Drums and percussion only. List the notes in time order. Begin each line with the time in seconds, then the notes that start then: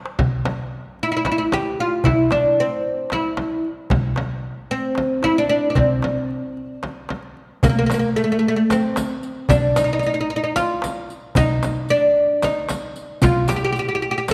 0.06 darbuka ka
0.19 frame drum, darbuka dum
0.45 darbuka tek, frame drum
0.99 darbuka ka
1.25 darbuka tek, frame drum
1.52 darbuka tek, frame drum
1.66 darbuka ka
1.79 darbuka ka
2.04 darbuka dum, frame drum
2.31 darbuka tek, frame drum
2.83 darbuka ka
3.10 darbuka tek, frame drum
3.37 darbuka tek, frame drum
3.50 darbuka ka
3.65 darbuka ka
3.90 darbuka dum, frame drum
4.16 darbuka tek, frame drum
4.71 darbuka ka
4.95 darbuka tek, frame drum
5.23 darbuka tek, frame drum
5.36 darbuka ka
5.51 darbuka ka
5.75 darbuka dum, frame drum
6.02 darbuka tek, frame drum
6.30 darbuka ka
6.57 darbuka ka
6.83 darbuka tek, frame drum
7.09 darbuka tek, frame drum
7.22 darbuka ka
7.37 darbuka ka
7.63 riq, darbuka dum, frame drum
7.90 riq, darbuka tek, frame drum
8.16 riq, darbuka ka
8.43 darbuka ka
8.70 riq, darbuka tek, frame drum
8.96 riq, darbuka tek, frame drum
9.23 riq, darbuka ka
9.49 riq, darbuka dum, frame drum
9.76 riq, darbuka tek, frame drum
10.02 riq, darbuka ka
10.30 darbuka ka
10.56 riq, darbuka tek, frame drum
10.82 riq, darbuka tek, frame drum
11.09 riq, darbuka ka
11.35 riq, darbuka dum, frame drum
11.63 riq, darbuka tek, frame drum
11.89 riq, darbuka ka
12.16 darbuka ka
12.42 riq, darbuka tek, frame drum
12.69 riq, darbuka tek, frame drum
12.96 riq, darbuka ka
13.22 riq, darbuka dum, frame drum
13.48 riq, darbuka tek, frame drum
13.76 riq, darbuka ka
14.02 darbuka ka
14.28 riq, darbuka tek, frame drum